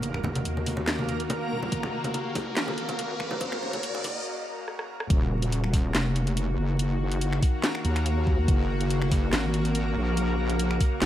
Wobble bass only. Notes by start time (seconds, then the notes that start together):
Already playing: F1
0.45 D#2
1.51 D#1
1.72 F#1
2.57 G#1
3.83 F#1
5.10 D#1
5.95 F1
6.58 F#1
7.85 D#2
8.48 F#1
9.33 G#1
9.96 A#1
11.02 F#1